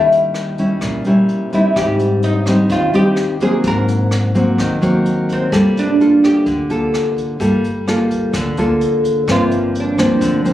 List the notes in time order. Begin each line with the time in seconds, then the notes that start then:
Already playing: D#2 D#3 G3 C#4 E4
0.12 closed hi-hat
0.34 cross-stick, closed hi-hat
0.58 G3 C#4 E4, kick, closed hi-hat
0.81 A#1 A#2, kick, cross-stick, closed hi-hat
1.04 A#1 G3 C#4 E4, closed hi-hat
1.29 closed hi-hat
1.53 G3 C4 D#4 E4, kick, closed hi-hat
1.76 G#1 G#2 G4, kick, cross-stick, closed hi-hat
1.99 closed hi-hat
2.23 D#4, closed hi-hat
2.46 G3 C4 D#4, kick, cross-stick, closed hi-hat
2.69 D#2 D#3 F4, kick, closed hi-hat
2.93 D#2 G3 C4 D#4 G4, closed hi-hat
3.16 cross-stick, closed hi-hat
3.40 F#3 A#3 C4 G#4, kick, closed hi-hat
3.64 G#1 G#2 A#4, kick, closed hi-hat
3.88 closed hi-hat
4.11 cross-stick, closed hi-hat
4.35 F#3 A#3 C4, kick, closed hi-hat
4.58 D#2 D#3, kick, cross-stick, closed hi-hat
4.82 D#2 F#3 A#3 C4, closed hi-hat
5.05 closed hi-hat
5.29 C4, kick, closed hi-hat
5.52 G1 G3 A#3 F4 A4, kick, cross-stick, closed hi-hat
5.77 D4, closed hi-hat
6.00 A#3 F4 A4, closed hi-hat
6.23 G4, kick, cross-stick, closed hi-hat
6.46 D2 D3, kick, closed hi-hat
6.70 D2 A#3 F4 A4, closed hi-hat
6.94 cross-stick, closed hi-hat
7.17 kick, closed hi-hat
7.40 G1 G3 A#3 F4 A4, kick, closed hi-hat
7.64 closed hi-hat
7.88 A#3 F4 A4, cross-stick, closed hi-hat
8.10 kick, closed hi-hat
8.33 D2 D3, kick, cross-stick, closed hi-hat
8.57 D2 A#3 F4 A4, closed hi-hat
8.81 closed hi-hat
9.04 kick, closed hi-hat
9.27 G1 G2 F3 A#3 C4, kick, cross-stick, closed hi-hat
9.32 F4
9.51 closed hi-hat
9.75 closed hi-hat
9.80 D4
9.98 D2 F3 A#3 C4, kick, cross-stick, closed hi-hat
10.21 D2 D3, kick, closed hi-hat
10.45 F3 A#3 C4, closed hi-hat